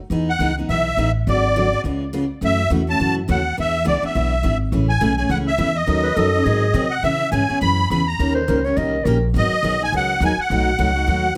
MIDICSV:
0, 0, Header, 1, 6, 480
1, 0, Start_track
1, 0, Key_signature, 4, "major"
1, 0, Tempo, 288462
1, 183, Time_signature, 4, 2, 24, 8
1, 18925, End_track
2, 0, Start_track
2, 0, Title_t, "Accordion"
2, 0, Program_c, 0, 21
2, 489, Note_on_c, 0, 78, 90
2, 922, Note_off_c, 0, 78, 0
2, 1158, Note_on_c, 0, 76, 92
2, 1855, Note_off_c, 0, 76, 0
2, 2149, Note_on_c, 0, 74, 82
2, 3020, Note_off_c, 0, 74, 0
2, 4073, Note_on_c, 0, 76, 97
2, 4495, Note_off_c, 0, 76, 0
2, 4821, Note_on_c, 0, 81, 95
2, 5248, Note_off_c, 0, 81, 0
2, 5500, Note_on_c, 0, 78, 82
2, 5928, Note_off_c, 0, 78, 0
2, 5994, Note_on_c, 0, 76, 94
2, 6416, Note_off_c, 0, 76, 0
2, 6446, Note_on_c, 0, 74, 70
2, 6719, Note_off_c, 0, 74, 0
2, 6748, Note_on_c, 0, 76, 80
2, 7617, Note_off_c, 0, 76, 0
2, 8139, Note_on_c, 0, 80, 85
2, 8582, Note_off_c, 0, 80, 0
2, 8607, Note_on_c, 0, 80, 73
2, 8821, Note_off_c, 0, 80, 0
2, 8826, Note_on_c, 0, 78, 83
2, 8950, Note_off_c, 0, 78, 0
2, 9109, Note_on_c, 0, 76, 91
2, 9582, Note_on_c, 0, 75, 77
2, 9597, Note_off_c, 0, 76, 0
2, 11486, Note_on_c, 0, 78, 82
2, 11557, Note_off_c, 0, 75, 0
2, 11700, Note_off_c, 0, 78, 0
2, 11701, Note_on_c, 0, 76, 97
2, 12147, Note_off_c, 0, 76, 0
2, 12178, Note_on_c, 0, 80, 81
2, 12625, Note_off_c, 0, 80, 0
2, 12666, Note_on_c, 0, 83, 104
2, 13136, Note_off_c, 0, 83, 0
2, 13161, Note_on_c, 0, 83, 81
2, 13431, Note_on_c, 0, 82, 79
2, 13436, Note_off_c, 0, 83, 0
2, 13871, Note_off_c, 0, 82, 0
2, 15601, Note_on_c, 0, 75, 102
2, 16351, Note_off_c, 0, 75, 0
2, 16371, Note_on_c, 0, 80, 98
2, 16542, Note_off_c, 0, 80, 0
2, 16584, Note_on_c, 0, 78, 99
2, 17036, Note_off_c, 0, 78, 0
2, 17057, Note_on_c, 0, 80, 90
2, 17304, Note_off_c, 0, 80, 0
2, 17310, Note_on_c, 0, 78, 88
2, 18864, Note_off_c, 0, 78, 0
2, 18925, End_track
3, 0, Start_track
3, 0, Title_t, "Clarinet"
3, 0, Program_c, 1, 71
3, 10038, Note_on_c, 1, 71, 96
3, 10252, Note_on_c, 1, 69, 93
3, 10277, Note_off_c, 1, 71, 0
3, 10721, Note_on_c, 1, 68, 83
3, 10746, Note_off_c, 1, 69, 0
3, 11349, Note_off_c, 1, 68, 0
3, 13891, Note_on_c, 1, 72, 91
3, 14384, Note_on_c, 1, 73, 98
3, 14409, Note_off_c, 1, 72, 0
3, 14596, Note_on_c, 1, 75, 113
3, 14621, Note_off_c, 1, 73, 0
3, 15058, Note_on_c, 1, 70, 84
3, 15083, Note_off_c, 1, 75, 0
3, 15438, Note_off_c, 1, 70, 0
3, 18925, End_track
4, 0, Start_track
4, 0, Title_t, "Steel-string acoustic guitar"
4, 0, Program_c, 2, 25
4, 179, Note_on_c, 2, 52, 69
4, 195, Note_on_c, 2, 59, 66
4, 199, Note_on_c, 2, 63, 67
4, 202, Note_on_c, 2, 68, 76
4, 494, Note_off_c, 2, 52, 0
4, 502, Note_off_c, 2, 59, 0
4, 504, Note_off_c, 2, 63, 0
4, 506, Note_off_c, 2, 68, 0
4, 665, Note_on_c, 2, 52, 85
4, 676, Note_on_c, 2, 59, 70
4, 676, Note_on_c, 2, 63, 85
4, 692, Note_on_c, 2, 68, 86
4, 836, Note_off_c, 2, 52, 0
4, 842, Note_off_c, 2, 59, 0
4, 842, Note_off_c, 2, 63, 0
4, 850, Note_off_c, 2, 68, 0
4, 958, Note_on_c, 2, 68, 50
4, 976, Note_on_c, 2, 63, 47
4, 990, Note_on_c, 2, 59, 48
4, 1143, Note_off_c, 2, 68, 0
4, 1149, Note_off_c, 2, 59, 0
4, 1149, Note_on_c, 2, 52, 58
4, 1152, Note_off_c, 2, 63, 0
4, 1169, Note_on_c, 2, 59, 62
4, 1173, Note_on_c, 2, 68, 63
4, 1176, Note_on_c, 2, 63, 60
4, 1459, Note_off_c, 2, 52, 0
4, 1469, Note_off_c, 2, 59, 0
4, 1471, Note_off_c, 2, 68, 0
4, 1473, Note_off_c, 2, 63, 0
4, 1626, Note_on_c, 2, 52, 77
4, 1632, Note_on_c, 2, 63, 84
4, 1637, Note_on_c, 2, 59, 86
4, 1645, Note_on_c, 2, 68, 88
4, 1797, Note_off_c, 2, 52, 0
4, 1800, Note_off_c, 2, 63, 0
4, 1803, Note_off_c, 2, 59, 0
4, 1806, Note_off_c, 2, 68, 0
4, 2117, Note_on_c, 2, 50, 58
4, 2123, Note_on_c, 2, 54, 63
4, 2135, Note_on_c, 2, 59, 65
4, 2140, Note_on_c, 2, 68, 70
4, 2141, Note_on_c, 2, 66, 72
4, 2423, Note_off_c, 2, 50, 0
4, 2426, Note_off_c, 2, 54, 0
4, 2432, Note_off_c, 2, 59, 0
4, 2434, Note_off_c, 2, 68, 0
4, 2435, Note_off_c, 2, 66, 0
4, 2597, Note_on_c, 2, 50, 81
4, 2597, Note_on_c, 2, 59, 82
4, 2598, Note_on_c, 2, 54, 77
4, 2606, Note_on_c, 2, 68, 78
4, 2607, Note_on_c, 2, 66, 79
4, 2762, Note_off_c, 2, 59, 0
4, 2763, Note_off_c, 2, 50, 0
4, 2763, Note_off_c, 2, 54, 0
4, 2767, Note_off_c, 2, 66, 0
4, 2767, Note_off_c, 2, 68, 0
4, 2880, Note_on_c, 2, 68, 60
4, 2899, Note_on_c, 2, 66, 51
4, 2907, Note_on_c, 2, 59, 39
4, 3064, Note_off_c, 2, 59, 0
4, 3064, Note_off_c, 2, 68, 0
4, 3072, Note_off_c, 2, 66, 0
4, 3074, Note_on_c, 2, 56, 58
4, 3077, Note_on_c, 2, 49, 58
4, 3079, Note_on_c, 2, 65, 62
4, 3084, Note_on_c, 2, 59, 63
4, 3089, Note_on_c, 2, 68, 59
4, 3381, Note_off_c, 2, 56, 0
4, 3383, Note_off_c, 2, 49, 0
4, 3384, Note_off_c, 2, 65, 0
4, 3387, Note_off_c, 2, 59, 0
4, 3389, Note_off_c, 2, 68, 0
4, 3544, Note_on_c, 2, 49, 84
4, 3552, Note_on_c, 2, 56, 78
4, 3553, Note_on_c, 2, 59, 83
4, 3554, Note_on_c, 2, 65, 86
4, 3567, Note_on_c, 2, 68, 92
4, 3716, Note_off_c, 2, 49, 0
4, 3720, Note_off_c, 2, 56, 0
4, 3721, Note_off_c, 2, 59, 0
4, 3721, Note_off_c, 2, 65, 0
4, 3728, Note_off_c, 2, 68, 0
4, 4023, Note_on_c, 2, 49, 62
4, 4029, Note_on_c, 2, 52, 67
4, 4033, Note_on_c, 2, 66, 73
4, 4037, Note_on_c, 2, 57, 69
4, 4040, Note_on_c, 2, 61, 63
4, 4336, Note_off_c, 2, 49, 0
4, 4339, Note_off_c, 2, 52, 0
4, 4341, Note_off_c, 2, 66, 0
4, 4343, Note_off_c, 2, 57, 0
4, 4344, Note_off_c, 2, 61, 0
4, 4495, Note_on_c, 2, 49, 82
4, 4499, Note_on_c, 2, 52, 78
4, 4506, Note_on_c, 2, 57, 83
4, 4512, Note_on_c, 2, 66, 90
4, 4513, Note_on_c, 2, 61, 88
4, 4672, Note_off_c, 2, 49, 0
4, 4673, Note_off_c, 2, 52, 0
4, 4677, Note_off_c, 2, 57, 0
4, 4680, Note_off_c, 2, 61, 0
4, 4680, Note_off_c, 2, 66, 0
4, 4777, Note_on_c, 2, 66, 50
4, 4796, Note_on_c, 2, 61, 49
4, 4807, Note_on_c, 2, 57, 41
4, 4971, Note_off_c, 2, 61, 0
4, 4972, Note_off_c, 2, 57, 0
4, 4972, Note_off_c, 2, 66, 0
4, 4978, Note_on_c, 2, 49, 55
4, 4987, Note_on_c, 2, 52, 59
4, 4991, Note_on_c, 2, 61, 55
4, 4992, Note_on_c, 2, 57, 64
4, 5004, Note_on_c, 2, 66, 71
4, 5293, Note_off_c, 2, 49, 0
4, 5298, Note_off_c, 2, 52, 0
4, 5300, Note_off_c, 2, 57, 0
4, 5300, Note_off_c, 2, 61, 0
4, 5306, Note_off_c, 2, 66, 0
4, 5455, Note_on_c, 2, 49, 77
4, 5465, Note_on_c, 2, 52, 82
4, 5470, Note_on_c, 2, 61, 84
4, 5475, Note_on_c, 2, 57, 93
4, 5477, Note_on_c, 2, 66, 88
4, 5631, Note_off_c, 2, 49, 0
4, 5636, Note_off_c, 2, 52, 0
4, 5639, Note_off_c, 2, 61, 0
4, 5641, Note_off_c, 2, 57, 0
4, 5642, Note_off_c, 2, 66, 0
4, 5942, Note_on_c, 2, 52, 61
4, 5953, Note_on_c, 2, 59, 67
4, 5959, Note_on_c, 2, 62, 61
4, 5961, Note_on_c, 2, 68, 71
4, 6255, Note_off_c, 2, 52, 0
4, 6261, Note_off_c, 2, 59, 0
4, 6264, Note_off_c, 2, 62, 0
4, 6265, Note_off_c, 2, 68, 0
4, 6401, Note_on_c, 2, 52, 86
4, 6409, Note_on_c, 2, 59, 90
4, 6415, Note_on_c, 2, 62, 89
4, 6416, Note_on_c, 2, 68, 89
4, 6584, Note_off_c, 2, 52, 0
4, 6588, Note_off_c, 2, 59, 0
4, 6591, Note_off_c, 2, 62, 0
4, 6592, Note_off_c, 2, 68, 0
4, 6697, Note_on_c, 2, 68, 55
4, 6710, Note_on_c, 2, 62, 51
4, 6720, Note_on_c, 2, 59, 44
4, 6892, Note_off_c, 2, 68, 0
4, 6893, Note_off_c, 2, 59, 0
4, 6899, Note_off_c, 2, 62, 0
4, 6900, Note_on_c, 2, 52, 55
4, 6913, Note_on_c, 2, 59, 61
4, 6915, Note_on_c, 2, 62, 66
4, 6932, Note_on_c, 2, 68, 65
4, 7214, Note_off_c, 2, 52, 0
4, 7221, Note_off_c, 2, 59, 0
4, 7222, Note_off_c, 2, 62, 0
4, 7230, Note_off_c, 2, 68, 0
4, 7373, Note_on_c, 2, 52, 75
4, 7378, Note_on_c, 2, 59, 86
4, 7387, Note_on_c, 2, 68, 93
4, 7390, Note_on_c, 2, 62, 91
4, 7550, Note_off_c, 2, 52, 0
4, 7552, Note_off_c, 2, 59, 0
4, 7557, Note_off_c, 2, 68, 0
4, 7558, Note_off_c, 2, 62, 0
4, 7860, Note_on_c, 2, 49, 66
4, 7865, Note_on_c, 2, 52, 66
4, 7869, Note_on_c, 2, 57, 71
4, 7872, Note_on_c, 2, 61, 64
4, 7882, Note_on_c, 2, 68, 76
4, 8174, Note_off_c, 2, 49, 0
4, 8176, Note_off_c, 2, 52, 0
4, 8178, Note_off_c, 2, 57, 0
4, 8180, Note_off_c, 2, 61, 0
4, 8185, Note_off_c, 2, 68, 0
4, 8330, Note_on_c, 2, 49, 82
4, 8336, Note_on_c, 2, 57, 93
4, 8337, Note_on_c, 2, 52, 84
4, 8349, Note_on_c, 2, 61, 82
4, 8352, Note_on_c, 2, 68, 96
4, 8508, Note_off_c, 2, 49, 0
4, 8511, Note_off_c, 2, 57, 0
4, 8512, Note_off_c, 2, 52, 0
4, 8518, Note_off_c, 2, 61, 0
4, 8519, Note_off_c, 2, 68, 0
4, 8619, Note_on_c, 2, 68, 60
4, 8640, Note_on_c, 2, 61, 46
4, 8652, Note_on_c, 2, 57, 46
4, 8812, Note_off_c, 2, 57, 0
4, 8813, Note_off_c, 2, 68, 0
4, 8814, Note_on_c, 2, 49, 60
4, 8819, Note_off_c, 2, 61, 0
4, 8825, Note_on_c, 2, 52, 65
4, 8832, Note_on_c, 2, 57, 62
4, 8838, Note_on_c, 2, 61, 69
4, 8841, Note_on_c, 2, 68, 74
4, 9130, Note_off_c, 2, 49, 0
4, 9136, Note_off_c, 2, 52, 0
4, 9140, Note_off_c, 2, 57, 0
4, 9143, Note_off_c, 2, 61, 0
4, 9144, Note_off_c, 2, 68, 0
4, 9282, Note_on_c, 2, 49, 81
4, 9288, Note_on_c, 2, 52, 82
4, 9295, Note_on_c, 2, 57, 87
4, 9295, Note_on_c, 2, 61, 83
4, 9303, Note_on_c, 2, 68, 85
4, 9464, Note_off_c, 2, 49, 0
4, 9467, Note_off_c, 2, 52, 0
4, 9470, Note_off_c, 2, 57, 0
4, 9470, Note_off_c, 2, 61, 0
4, 9475, Note_off_c, 2, 68, 0
4, 9761, Note_on_c, 2, 51, 66
4, 9772, Note_on_c, 2, 54, 71
4, 9775, Note_on_c, 2, 61, 65
4, 9781, Note_on_c, 2, 63, 64
4, 9785, Note_on_c, 2, 69, 69
4, 10084, Note_off_c, 2, 51, 0
4, 10089, Note_off_c, 2, 54, 0
4, 10091, Note_off_c, 2, 61, 0
4, 10094, Note_off_c, 2, 63, 0
4, 10096, Note_off_c, 2, 69, 0
4, 10252, Note_on_c, 2, 51, 79
4, 10260, Note_on_c, 2, 61, 79
4, 10261, Note_on_c, 2, 54, 83
4, 10269, Note_on_c, 2, 63, 86
4, 10273, Note_on_c, 2, 69, 84
4, 10429, Note_off_c, 2, 51, 0
4, 10433, Note_off_c, 2, 54, 0
4, 10433, Note_off_c, 2, 61, 0
4, 10437, Note_off_c, 2, 63, 0
4, 10439, Note_off_c, 2, 69, 0
4, 10547, Note_on_c, 2, 69, 55
4, 10560, Note_on_c, 2, 63, 49
4, 10579, Note_on_c, 2, 61, 42
4, 10734, Note_on_c, 2, 51, 57
4, 10735, Note_off_c, 2, 61, 0
4, 10736, Note_off_c, 2, 69, 0
4, 10737, Note_off_c, 2, 63, 0
4, 10741, Note_on_c, 2, 60, 65
4, 10749, Note_on_c, 2, 54, 56
4, 10754, Note_on_c, 2, 68, 76
4, 10757, Note_on_c, 2, 63, 64
4, 11050, Note_off_c, 2, 51, 0
4, 11054, Note_off_c, 2, 60, 0
4, 11058, Note_off_c, 2, 54, 0
4, 11060, Note_off_c, 2, 68, 0
4, 11062, Note_off_c, 2, 63, 0
4, 11215, Note_on_c, 2, 51, 85
4, 11221, Note_on_c, 2, 54, 86
4, 11225, Note_on_c, 2, 60, 88
4, 11234, Note_on_c, 2, 63, 92
4, 11234, Note_on_c, 2, 68, 89
4, 11390, Note_off_c, 2, 51, 0
4, 11393, Note_off_c, 2, 54, 0
4, 11395, Note_off_c, 2, 60, 0
4, 11400, Note_off_c, 2, 63, 0
4, 11400, Note_off_c, 2, 68, 0
4, 11695, Note_on_c, 2, 49, 60
4, 11712, Note_on_c, 2, 59, 63
4, 11715, Note_on_c, 2, 52, 61
4, 11723, Note_on_c, 2, 61, 68
4, 11723, Note_on_c, 2, 68, 74
4, 12011, Note_off_c, 2, 49, 0
4, 12019, Note_off_c, 2, 59, 0
4, 12021, Note_off_c, 2, 52, 0
4, 12024, Note_off_c, 2, 68, 0
4, 12025, Note_off_c, 2, 61, 0
4, 12175, Note_on_c, 2, 49, 88
4, 12179, Note_on_c, 2, 52, 78
4, 12190, Note_on_c, 2, 59, 82
4, 12198, Note_on_c, 2, 68, 92
4, 12200, Note_on_c, 2, 61, 93
4, 12350, Note_off_c, 2, 49, 0
4, 12352, Note_off_c, 2, 52, 0
4, 12358, Note_off_c, 2, 59, 0
4, 12362, Note_off_c, 2, 68, 0
4, 12363, Note_off_c, 2, 61, 0
4, 12461, Note_on_c, 2, 68, 54
4, 12472, Note_on_c, 2, 61, 48
4, 12485, Note_on_c, 2, 59, 42
4, 12652, Note_off_c, 2, 59, 0
4, 12653, Note_off_c, 2, 68, 0
4, 12659, Note_off_c, 2, 61, 0
4, 12663, Note_on_c, 2, 49, 66
4, 12672, Note_on_c, 2, 59, 70
4, 12673, Note_on_c, 2, 52, 63
4, 12677, Note_on_c, 2, 68, 70
4, 12679, Note_on_c, 2, 61, 74
4, 12974, Note_off_c, 2, 49, 0
4, 12979, Note_off_c, 2, 59, 0
4, 12980, Note_off_c, 2, 52, 0
4, 12982, Note_off_c, 2, 68, 0
4, 12983, Note_off_c, 2, 61, 0
4, 13161, Note_on_c, 2, 52, 87
4, 13164, Note_on_c, 2, 49, 82
4, 13171, Note_on_c, 2, 68, 91
4, 13173, Note_on_c, 2, 59, 83
4, 13177, Note_on_c, 2, 61, 94
4, 13323, Note_off_c, 2, 52, 0
4, 13324, Note_off_c, 2, 49, 0
4, 13328, Note_off_c, 2, 68, 0
4, 13329, Note_off_c, 2, 59, 0
4, 13331, Note_off_c, 2, 61, 0
4, 13636, Note_on_c, 2, 58, 68
4, 13641, Note_on_c, 2, 51, 65
4, 13647, Note_on_c, 2, 61, 70
4, 13651, Note_on_c, 2, 70, 76
4, 13655, Note_on_c, 2, 67, 69
4, 13941, Note_off_c, 2, 58, 0
4, 13944, Note_off_c, 2, 51, 0
4, 13947, Note_off_c, 2, 61, 0
4, 13949, Note_off_c, 2, 70, 0
4, 13951, Note_off_c, 2, 67, 0
4, 14108, Note_on_c, 2, 51, 86
4, 14111, Note_on_c, 2, 58, 85
4, 14113, Note_on_c, 2, 61, 90
4, 14128, Note_on_c, 2, 67, 90
4, 14131, Note_on_c, 2, 70, 90
4, 14277, Note_off_c, 2, 51, 0
4, 14278, Note_off_c, 2, 58, 0
4, 14279, Note_off_c, 2, 61, 0
4, 14287, Note_off_c, 2, 67, 0
4, 14289, Note_off_c, 2, 70, 0
4, 14386, Note_on_c, 2, 70, 50
4, 14414, Note_on_c, 2, 67, 49
4, 14428, Note_on_c, 2, 61, 39
4, 14576, Note_off_c, 2, 70, 0
4, 14581, Note_off_c, 2, 67, 0
4, 14582, Note_off_c, 2, 61, 0
4, 14587, Note_on_c, 2, 58, 67
4, 14589, Note_on_c, 2, 51, 63
4, 14601, Note_on_c, 2, 67, 71
4, 14602, Note_on_c, 2, 61, 65
4, 14607, Note_on_c, 2, 70, 67
4, 14897, Note_off_c, 2, 58, 0
4, 14898, Note_off_c, 2, 51, 0
4, 14904, Note_off_c, 2, 61, 0
4, 14904, Note_off_c, 2, 67, 0
4, 14907, Note_off_c, 2, 70, 0
4, 15072, Note_on_c, 2, 51, 81
4, 15082, Note_on_c, 2, 58, 87
4, 15084, Note_on_c, 2, 61, 93
4, 15093, Note_on_c, 2, 67, 96
4, 15095, Note_on_c, 2, 70, 98
4, 15239, Note_off_c, 2, 51, 0
4, 15244, Note_off_c, 2, 58, 0
4, 15245, Note_off_c, 2, 61, 0
4, 15250, Note_off_c, 2, 67, 0
4, 15251, Note_off_c, 2, 70, 0
4, 15562, Note_on_c, 2, 51, 68
4, 15576, Note_on_c, 2, 63, 71
4, 15580, Note_on_c, 2, 54, 68
4, 15582, Note_on_c, 2, 59, 79
4, 15583, Note_on_c, 2, 68, 82
4, 15865, Note_off_c, 2, 51, 0
4, 15872, Note_off_c, 2, 63, 0
4, 15874, Note_off_c, 2, 54, 0
4, 15875, Note_off_c, 2, 59, 0
4, 15875, Note_off_c, 2, 68, 0
4, 16025, Note_on_c, 2, 51, 81
4, 16039, Note_on_c, 2, 54, 76
4, 16043, Note_on_c, 2, 59, 90
4, 16047, Note_on_c, 2, 68, 99
4, 16051, Note_on_c, 2, 63, 94
4, 16196, Note_off_c, 2, 51, 0
4, 16203, Note_off_c, 2, 54, 0
4, 16205, Note_off_c, 2, 59, 0
4, 16207, Note_off_c, 2, 68, 0
4, 16209, Note_off_c, 2, 63, 0
4, 16306, Note_on_c, 2, 68, 58
4, 16334, Note_on_c, 2, 63, 43
4, 16347, Note_on_c, 2, 59, 51
4, 16497, Note_off_c, 2, 68, 0
4, 16511, Note_off_c, 2, 63, 0
4, 16517, Note_off_c, 2, 59, 0
4, 16519, Note_on_c, 2, 51, 62
4, 16521, Note_on_c, 2, 54, 67
4, 16535, Note_on_c, 2, 63, 74
4, 16537, Note_on_c, 2, 59, 63
4, 16541, Note_on_c, 2, 68, 79
4, 16824, Note_off_c, 2, 51, 0
4, 16825, Note_off_c, 2, 54, 0
4, 16832, Note_off_c, 2, 63, 0
4, 16833, Note_off_c, 2, 59, 0
4, 16835, Note_off_c, 2, 68, 0
4, 16997, Note_on_c, 2, 51, 84
4, 17006, Note_on_c, 2, 54, 79
4, 17009, Note_on_c, 2, 59, 78
4, 17014, Note_on_c, 2, 63, 89
4, 17017, Note_on_c, 2, 68, 95
4, 17163, Note_off_c, 2, 51, 0
4, 17167, Note_off_c, 2, 54, 0
4, 17169, Note_off_c, 2, 59, 0
4, 17171, Note_off_c, 2, 63, 0
4, 17173, Note_off_c, 2, 68, 0
4, 17489, Note_on_c, 2, 54, 71
4, 17490, Note_on_c, 2, 47, 66
4, 17493, Note_on_c, 2, 57, 71
4, 17507, Note_on_c, 2, 63, 73
4, 17507, Note_on_c, 2, 66, 72
4, 17790, Note_off_c, 2, 47, 0
4, 17790, Note_off_c, 2, 54, 0
4, 17792, Note_off_c, 2, 57, 0
4, 17799, Note_off_c, 2, 63, 0
4, 17799, Note_off_c, 2, 66, 0
4, 17948, Note_on_c, 2, 47, 90
4, 17949, Note_on_c, 2, 57, 84
4, 17950, Note_on_c, 2, 54, 86
4, 17957, Note_on_c, 2, 63, 80
4, 17965, Note_on_c, 2, 66, 89
4, 18119, Note_off_c, 2, 47, 0
4, 18120, Note_off_c, 2, 54, 0
4, 18120, Note_off_c, 2, 57, 0
4, 18123, Note_off_c, 2, 63, 0
4, 18128, Note_off_c, 2, 66, 0
4, 18229, Note_on_c, 2, 66, 53
4, 18246, Note_on_c, 2, 63, 53
4, 18268, Note_on_c, 2, 57, 43
4, 18409, Note_off_c, 2, 57, 0
4, 18412, Note_off_c, 2, 63, 0
4, 18413, Note_off_c, 2, 66, 0
4, 18413, Note_on_c, 2, 47, 61
4, 18424, Note_on_c, 2, 54, 64
4, 18429, Note_on_c, 2, 57, 65
4, 18432, Note_on_c, 2, 63, 69
4, 18433, Note_on_c, 2, 66, 68
4, 18733, Note_off_c, 2, 47, 0
4, 18738, Note_off_c, 2, 54, 0
4, 18741, Note_off_c, 2, 57, 0
4, 18742, Note_off_c, 2, 63, 0
4, 18743, Note_off_c, 2, 66, 0
4, 18925, End_track
5, 0, Start_track
5, 0, Title_t, "Upright bass"
5, 0, Program_c, 3, 32
5, 163, Note_on_c, 3, 40, 78
5, 555, Note_off_c, 3, 40, 0
5, 645, Note_on_c, 3, 37, 79
5, 1060, Note_off_c, 3, 37, 0
5, 1143, Note_on_c, 3, 35, 70
5, 1550, Note_off_c, 3, 35, 0
5, 1613, Note_on_c, 3, 33, 79
5, 2025, Note_off_c, 3, 33, 0
5, 2110, Note_on_c, 3, 32, 86
5, 2875, Note_off_c, 3, 32, 0
5, 3057, Note_on_c, 3, 37, 80
5, 3827, Note_off_c, 3, 37, 0
5, 4012, Note_on_c, 3, 42, 82
5, 4482, Note_off_c, 3, 42, 0
5, 4495, Note_on_c, 3, 40, 75
5, 4964, Note_off_c, 3, 40, 0
5, 4985, Note_on_c, 3, 42, 80
5, 5449, Note_off_c, 3, 42, 0
5, 5468, Note_on_c, 3, 39, 90
5, 5930, Note_off_c, 3, 39, 0
5, 5952, Note_on_c, 3, 40, 81
5, 6412, Note_off_c, 3, 40, 0
5, 6431, Note_on_c, 3, 37, 74
5, 6684, Note_off_c, 3, 37, 0
5, 6906, Note_on_c, 3, 35, 78
5, 7369, Note_off_c, 3, 35, 0
5, 7381, Note_on_c, 3, 32, 82
5, 7842, Note_off_c, 3, 32, 0
5, 7852, Note_on_c, 3, 33, 87
5, 8321, Note_off_c, 3, 33, 0
5, 8336, Note_on_c, 3, 35, 85
5, 8796, Note_off_c, 3, 35, 0
5, 8806, Note_on_c, 3, 37, 79
5, 9278, Note_off_c, 3, 37, 0
5, 9287, Note_on_c, 3, 40, 85
5, 9759, Note_off_c, 3, 40, 0
5, 9772, Note_on_c, 3, 39, 76
5, 10241, Note_off_c, 3, 39, 0
5, 10255, Note_on_c, 3, 42, 80
5, 10722, Note_off_c, 3, 42, 0
5, 10740, Note_on_c, 3, 44, 84
5, 11196, Note_off_c, 3, 44, 0
5, 11206, Note_on_c, 3, 48, 93
5, 11678, Note_off_c, 3, 48, 0
5, 11694, Note_on_c, 3, 49, 86
5, 12162, Note_off_c, 3, 49, 0
5, 12171, Note_on_c, 3, 44, 74
5, 12433, Note_off_c, 3, 44, 0
5, 12664, Note_on_c, 3, 42, 75
5, 13127, Note_off_c, 3, 42, 0
5, 13147, Note_on_c, 3, 40, 89
5, 13609, Note_off_c, 3, 40, 0
5, 13631, Note_on_c, 3, 39, 83
5, 14091, Note_off_c, 3, 39, 0
5, 14111, Note_on_c, 3, 37, 86
5, 14571, Note_off_c, 3, 37, 0
5, 14586, Note_on_c, 3, 36, 88
5, 15049, Note_off_c, 3, 36, 0
5, 15062, Note_on_c, 3, 34, 93
5, 15527, Note_off_c, 3, 34, 0
5, 15539, Note_on_c, 3, 32, 94
5, 15798, Note_off_c, 3, 32, 0
5, 16016, Note_on_c, 3, 35, 85
5, 16485, Note_off_c, 3, 35, 0
5, 16509, Note_on_c, 3, 37, 78
5, 16966, Note_off_c, 3, 37, 0
5, 16976, Note_on_c, 3, 39, 93
5, 17237, Note_off_c, 3, 39, 0
5, 17470, Note_on_c, 3, 35, 87
5, 17933, Note_off_c, 3, 35, 0
5, 17945, Note_on_c, 3, 37, 77
5, 18411, Note_off_c, 3, 37, 0
5, 18429, Note_on_c, 3, 39, 78
5, 18893, Note_off_c, 3, 39, 0
5, 18925, End_track
6, 0, Start_track
6, 0, Title_t, "Muted upright bass strokes"
6, 6708, Note_on_c, 9, 29, 37
6, 6874, Note_off_c, 9, 29, 0
6, 12468, Note_on_c, 9, 29, 40
6, 12634, Note_off_c, 9, 29, 0
6, 15821, Note_on_c, 9, 29, 37
6, 15988, Note_off_c, 9, 29, 0
6, 17262, Note_on_c, 9, 29, 35
6, 17429, Note_off_c, 9, 29, 0
6, 18925, End_track
0, 0, End_of_file